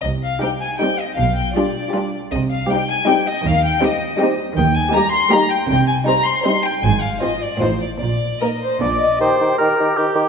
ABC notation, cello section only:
X:1
M:3/4
L:1/8
Q:1/4=158
K:Cm
V:1 name="Cello section" clef=bass
C,2 z4 | =B,,2 z4 | C,2 z4 | E,2 z4 |
[K:Eb] E,2 z4 | C,2 z4 | A,,2 z2 =A,,2 | B,,2 z2 B,,2 |
z6 |]